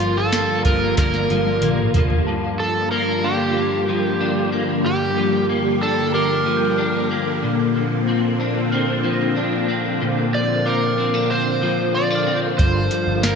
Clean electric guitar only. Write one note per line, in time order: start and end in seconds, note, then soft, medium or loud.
0.00 2.26 G2 medium
0.00 0.65 F3 medium
0.33 0.98 A#3 medium
0.65 1.30 F3 medium
0.98 1.62 A#3 medium
1.30 1.95 F3 medium
1.63 2.91 A#3 medium
1.96 2.59 F3 medium
2.27 4.83 G2 medium
2.59 3.88 F3 medium
2.91 3.56 A#3 medium
3.24 4.20 D4 medium
3.57 4.52 A#3 medium
3.89 5.16 F3 medium
4.21 5.81 D4 medium
4.52 5.49 A#3 medium
4.85 7.43 G2 medium
5.17 6.46 F3 medium
5.49 6.13 A#3 medium
5.82 6.78 D4 medium
6.14 7.10 A#3 medium
6.46 7.75 F3 medium
6.78 8.11 D4 medium
7.11 8.07 A#3 medium
7.43 10.00 A#2 medium
7.75 9.04 F3 medium
8.08 8.71 C4 medium
8.40 9.36 D4 medium
8.72 9.67 C4 medium
9.04 10.33 F3 medium
9.36 10.98 D4 medium
9.68 10.64 C4 medium
10.01 12.58 A#2 medium
10.34 11.62 F3 medium
10.66 10.97 C4 medium
10.98 11.14 C4 medium
11.14 11.95 D4 medium
11.30 11.94 C4 medium
11.62 12.91 F3 medium
11.95 12.10 C4 medium
12.10 12.65 D4 medium
12.27 12.65 C4 medium
12.59 13.35 G2 medium
12.91 13.35 F3 medium
13.23 13.35 A#3 medium